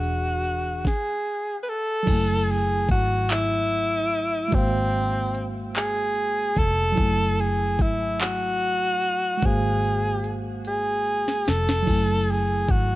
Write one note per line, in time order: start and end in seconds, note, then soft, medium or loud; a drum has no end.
0.00 0.82 E1 medium
0.00 0.84 E3 medium
0.00 0.85 D4 medium
0.00 0.86 F#4 soft
0.00 0.86 F#4 medium
0.00 0.87 G#4 medium
0.00 closed hi-hat soft
0.44 closed hi-hat medium
0.85 1.57 G#4 medium
0.85 kick medium
0.85 snare medium
1.63 1.70 B4 medium
1.69 2.52 A4 loud
2.03 4.46 F#3 medium
2.03 4.48 E4 medium
2.03 closed hi-hat medium
2.03 crash loud
2.07 2.86 F#1 medium
2.07 4.49 G#5 medium
2.07 kick loud
2.13 4.51 A3 medium
2.48 2.90 G#4 medium
2.48 closed hi-hat soft
2.89 4.49 G#1 medium
2.89 3.32 F#4 loud
2.89 kick loud
2.89 closed hi-hat medium
3.29 4.56 E4 loud
3.29 clap loud
3.29 closed hi-hat medium
3.70 closed hi-hat soft
4.11 closed hi-hat medium
4.48 6.91 G#3 medium
4.48 6.93 F#4 medium
4.48 closed hi-hat medium
4.52 6.53 G#1 loud
4.52 6.94 A#3 medium
4.52 5.49 C4 medium
4.52 6.95 C5 medium
4.52 kick loud
4.58 6.96 F5 medium
4.94 closed hi-hat medium
5.35 closed hi-hat medium
5.75 6.60 G#4 loud
5.75 clap loud
5.75 closed hi-hat medium
6.15 closed hi-hat soft
6.56 6.94 F1 medium
6.56 7.42 A4 loud
6.56 kick loud
6.56 closed hi-hat medium
6.92 9.36 F#3 medium
6.92 9.37 E4 medium
6.97 7.80 F#1 loud
6.97 9.39 G#5 medium
6.97 kick loud
6.97 closed hi-hat medium
7.02 9.41 A3 medium
7.39 7.83 G#4 loud
7.39 closed hi-hat soft
7.79 9.39 G#1 medium
7.79 8.21 E4 medium
7.79 kick loud
7.79 closed hi-hat medium
8.19 9.47 F#4 loud
8.19 clap loud
8.19 closed hi-hat medium
8.61 closed hi-hat medium
9.02 closed hi-hat medium
9.37 11.81 G#3 medium
9.37 11.82 F#4 medium
9.42 11.43 G#1 loud
9.42 11.83 A#3 medium
9.42 10.39 G#4 loud
9.42 11.85 C5 medium
9.42 kick loud
9.42 closed hi-hat medium
9.48 11.86 F5 medium
9.84 closed hi-hat soft
10.24 closed hi-hat medium
10.65 11.50 G#4 loud
10.65 closed hi-hat medium
11.05 closed hi-hat soft
11.28 snare medium
11.46 11.84 F1 medium
11.46 12.32 A4 loud
11.46 snare loud
11.46 closed hi-hat medium
11.69 snare loud
11.82 12.96 F#3 medium
11.82 12.96 E4 medium
11.87 12.65 F#1 medium
11.87 12.96 G#5 medium
11.87 kick loud
11.87 crash medium
11.92 12.96 A3 medium
12.29 12.72 G#4 loud
12.29 closed hi-hat soft
12.69 12.96 G#1 medium
12.69 12.96 F#4 medium
12.69 kick loud
12.69 closed hi-hat medium